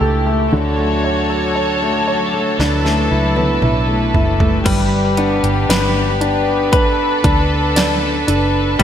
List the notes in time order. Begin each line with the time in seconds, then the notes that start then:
Already playing: E3 A3 D4 E4 G4
0.00 C#2 A4
0.27 A3
0.51 D2 D3 F#3 F#4 A4 C#5
0.79 A3
1.04 C#5
1.30 A4
1.56 C#5
1.82 A3
2.08 C#5
2.34 A3
2.59 D2 D4 E4 B4, snare
2.85 A3, snare
3.11 C#2 E4
3.36 B3, high tom
3.62 B1 E4, mid tom
3.88 A3
4.14 F#1 E4, floor tom
4.40 A3, floor tom
4.65 G1 G3 D4 G4 B4, kick, closed hi-hat, crash
5.17 B3 D4, closed hi-hat
5.43 G1, closed hi-hat
5.69 G1 B3 D4 B4, snare, closed hi-hat
6.21 D4, closed hi-hat
6.72 A4 B4, kick, closed hi-hat
7.24 D2 D4, kick, closed hi-hat
7.76 D5, snare, closed hi-hat
8.27 F#1 D4, closed hi-hat
8.79 G1 G3 G4 B4 D5 F#5, kick, closed hi-hat